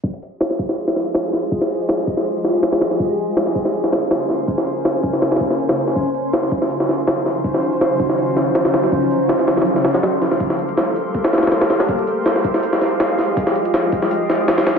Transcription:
<<
  \new Staff \with { instrumentName = "Synth texture" } { \time 4/4 \key f \minor \tempo 4 = 162 <c'' c'''>1~ | <c'' c'''>1~ | <c'' c'''>1~ | <c'' c'''>1~ |
<c'' c'''>1~ | <c'' c'''>1~ | <c'' c'''>1~ | <c'' c'''>1 |
<f'' f'''>1~ | <f'' f'''>1 | }
  \new DrumStaff \with { instrumentName = "Drums" } \drummode { \time 4/4 <hho bd>16 hh16 hho8 <hho sn>16 sn16 <hho bd>16 sn16 hho16 sn16 <hho sn>8 <hho sn>8 <hho sn>8 | <hho bd>16 sn16 hho16 hh16 <hho sn>8 <hho bd>16 sn16 hho8 <hho sn>8 <hho sn>16 <hho sn>16 <hho sn>16 sn16 | <hho bd>16 hh16 hho8 <hho sn>16 sn16 <hho bd>16 sn16 hho16 sn16 <hho sn>8 <hho sn>8 <hho sn>8 | <hho bd>16 sn16 hho16 hh16 <hho sn>8 <hho bd>16 sn16 <hho sn>16 <hho sn>32 <hho sn>32 <hho bd>16 sn16 hho16 sn16 hho16 sn16 |
<hho bd>16 hh16 hho8 <hho sn>16 sn16 <hho bd>16 sn16 hho16 sn16 <hho sn>8 <hho sn>8 <hho sn>8 | <hho bd>16 sn16 hho16 hh16 <hho sn>8 <hho bd>16 sn16 hho8 <hho sn>8 <hho sn>16 <hho sn>16 <hho sn>16 sn16 | <hho bd>16 hh16 hho8 <hho sn>16 sn16 <hho sn>16 <hho sn>32 <hho sn>32 hho16 sn16 <hho sn>16 <hho sn>16 <hho sn>8 <hho sn>16 sn16 | <hho bd>16 sn16 hho16 hh16 <hho sn>8 hho8 <hho bd>16 <hho sn>16 <hho sn>32 <hho sn>32 <hho sn>32 <hho sn>32 <hho sn>16 sn16 <hho sn>16 <hho sn>16 |
<hho bd>16 hh16 hho8 <hho sn>16 sn16 <hho bd>16 sn16 hho16 sn16 <hho sn>8 <hho sn>8 <hho sn>8 | <hho bd>16 sn16 hho16 hh16 <hho sn>8 <hho bd>16 sn16 hho8 <hho sn>8 <hho sn>16 <hho sn>16 <hho sn>8 | }
>>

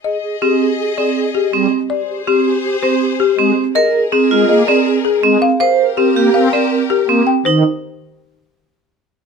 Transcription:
<<
  \new Staff \with { instrumentName = "Marimba" } { \time 5/4 \key aes \lydian \tempo 4 = 162 ees''8 r8 g'8 r4 d''8 r8 g'8 r4 | d''8 r8 g'8 r4 c''8 r8 g'8 r4 | ees''8 r8 aes'8 r8 ees''8 d''8 r8 aes'8 r8 f''8 | f''8 r8 g'8 r8 f''8 d''8 r8 g'8 r8 g''8 |
c''8 r1 r8 | }
  \new Staff \with { instrumentName = "String section" } { \time 5/4 \key aes \lydian <aes' ees''>1~ <aes' ees''>8 r8 | <aes' c''>1~ <aes' c''>8 r8 | <aes' bes'>1~ <aes' bes'>8 r8 | <g' bes'>1~ <g' bes'>8 r8 |
r1 r4 | }
  \new Staff \with { instrumentName = "Alto flute" } { \time 5/4 \key aes \lydian aes'8 aes'8 aes'8 aes'8 aes'8 aes'8 aes'8 aes'8 aes'8 r8 | g'8 g'8 g'8 g'8 g'8 g'8 g'8 g'8 g'8 r8 | aes'8 aes'8 aes'8 aes'8 aes'8 aes'8 aes'8 aes'8 aes'8 r8 | bes'8 bes'8 bes'8 bes'8 bes'8 bes'8 bes'8 bes'8 bes'8 r8 |
r1 r4 | }
  \new Staff \with { instrumentName = "Vibraphone" } { \time 5/4 \key aes \lydian r4 c'8 r4 c'8 r4 c'8 r8 | r4 c'8 r4 c'8 r4 c'8 r8 | bes'8 r8 c'8 f'8 r8 c'8 r4 c'8 r8 | c''8 r8 c'8 g'8 r8 c'8 r4 c'8 r8 |
ees'8 r1 r8 | }
  \new Staff \with { instrumentName = "Pipe organ" } { \clef bass \time 5/4 \key aes \lydian r1 g8 r8 | r1 aes8 r8 | r4. aes8 bes8 r4. aes8 r8 | r4. bes8 c'8 r4. bes8 r8 |
ees8 r1 r8 | }
>>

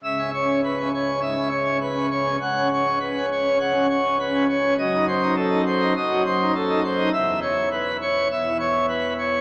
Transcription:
<<
  \new Staff \with { instrumentName = "Pipe organ" } { \time 4/4 \key cis \minor \tempo 4 = 102 << { e''8 cis''8 b'8 cis''8 e''8 cis''8 b'8 cis''8 | fis''8 cis''8 b'8 cis''8 fis''8 cis''8 b'8 cis''8 | dis''8 c''8 a'8 c''8 dis''8 c''8 a'8 c''8 | e''8 cis''8 b'8 cis''8 e''8 cis''8 b'8 cis''8 | } \\ { cis,16 cis'16 r16 cis'16 r16 cis'16 r16 cis'16 gis,16 cis'16 r16 cis'16 r16 cis'16 r16 cis'16 | cis,16 cis'16 r16 cis'16 r16 cis'16 r16 cis'16 cis16 cis'16 r16 cis'16 r16 cis'16 r16 cis'16 | fis,16 dis'16 r16 dis'16 r16 dis'16 r16 dis'16 fis,16 fis16 r16 dis'16 r16 dis'16 r16 dis'16 | e,2 e,16 e16 r4. | } >> }
  \new Staff \with { instrumentName = "Pipe organ" } { \clef bass \time 4/4 \key cis \minor cis,,1 | cis,,1 | fis,,2 fis,,2 | e,,2 e,,2 | }
>>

